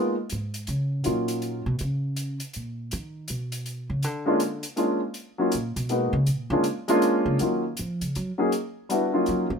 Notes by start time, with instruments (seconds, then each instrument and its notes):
Already playing: grand piano G#3 A#3 B3 D#4 F4
0.30 upright bass G#2, closed hi-hat
0.54 closed hi-hat
0.67 upright bass C#3, closed hi-hat
1.03 upright bass A#2, grand piano F#3 A#3 C#4 D#4 F4, closed hi-hat
1.28 closed hi-hat
1.42 closed hi-hat
1.66 upright bass B2
1.79 upright bass C#3, closed hi-hat
2.16 closed hi-hat
2.40 closed hi-hat
2.53 upright bass A#2, closed hi-hat
2.91 upright bass D#3, closed hi-hat
3.28 upright bass B2, closed hi-hat
3.52 closed hi-hat
3.66 closed hi-hat
3.90 upright bass C#3
4.03 upright bass D3, closed hi-hat
4.26 grand piano G#3 A#3 C#4 D4 F4
4.40 closed hi-hat
4.63 closed hi-hat
4.76 grand piano G#3 A#3 C#4 D4 F4, closed hi-hat
5.14 closed hi-hat
5.38 grand piano F#3 A#3 C#4 D#4 F4
5.52 upright bass A#2, closed hi-hat
5.76 upright bass B2, closed hi-hat
5.89 grand piano G#3 A#3 B3 D#4 F#4, closed hi-hat
6.13 upright bass C#3
6.26 upright bass A#2, closed hi-hat
6.50 upright bass D3, grand piano G#3 A#3 C#4 D4 F4
6.64 closed hi-hat
6.88 grand piano G#3 A#3 C#4 D4 F4, closed hi-hat
7.02 closed hi-hat
7.26 upright bass C#3
7.39 upright bass D#3, grand piano F#3 A#3 C#4 D#4 F4, closed hi-hat
7.77 upright bass F3, closed hi-hat
8.01 upright bass C#3, closed hi-hat
8.15 upright bass F#3, closed hi-hat
8.38 grand piano F#3 A#3 C#4 D#4 G#4
8.52 closed hi-hat
8.89 grand piano G3 B3 D4 E4 F#4, closed hi-hat
9.13 grand piano F#3 A#3 C#4 D#4 F4
9.26 upright bass F#3, closed hi-hat
9.50 upright bass F3